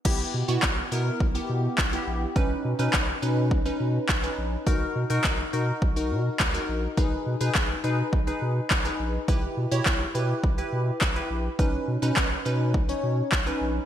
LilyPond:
<<
  \new Staff \with { instrumentName = "Synth pluck" } { \time 4/4 \key e \lydian \tempo 4 = 104 <b e' g'>8 r16 <b e' fis'>8 r16 <b e' ais'>8 r16 <b e' g'>8. r16 <b e' g'>8 r16 | <cis' dis' b'>8 r16 <cis' dis' b'>8 r16 <cis' dis' b'>8 r16 <cis' dis' b'>8. r16 <cis' dis' b'>8 r16 | <dis' fis' ais'>8 r16 <dis' fis' ais'>8 r16 <dis' fis' ais'>8 r16 <dis' fis' ais'>8. r16 <dis' fis' ais'>8 r16 | <dis' gis' b'>8 r16 <dis' gis' b'>8 r16 <dis' gis' b'>8 r16 <dis' gis' b'>8. r16 <dis' gis' b'>8 r16 |
<e' g' b'>8 r16 <e' g' cis''>8 r16 <e' g' b'>8 r16 <e' g' b'>8. r16 <e' g' b'>8 r16 | <cis' dis' b'>8 r16 <cis' dis' b'>8 r16 <cis' dis' b'>8 r16 <cis' dis' cis''>8. r16 <cis' dis' b'>8 r16 | }
  \new Staff \with { instrumentName = "Sub bass" } { \clef bass \time 4/4 \key e \lydian b,,8 b,16 b,16 b,,8 b,8 b,,8 b,8 b,,8 ais,,8 | b,,8 b,16 b,16 b,,8 b,8 b,,8 b,8 b,,8 ais,,8 | b,,8 b,16 b,16 b,,8 b,8 b,,8 b,8 cis,8 ais,,8 | b,,8 b,16 b,16 b,,8 b,8 b,,8 b,8 b,,8 ais,,8 |
b,,8 b,16 b,16 b,,8 b,8 b,,8 b,8 b,,8 ais,,8 | b,,8 b,16 b,16 b,,8 b,8 b,,8 b,8 b,,8 ais,,8 | }
  \new DrumStaff \with { instrumentName = "Drums" } \drummode { \time 4/4 <cymc bd>4 <hc bd>4 bd4 <hc bd>4 | bd4 <hc bd>4 bd4 <hc bd>4 | bd4 <hc bd>4 bd4 <hc bd>4 | bd4 <hc bd>4 bd4 <hc bd>4 |
bd4 <hc bd>4 bd4 <hc bd>4 | bd4 <hc bd>4 bd4 <hc bd>4 | }
>>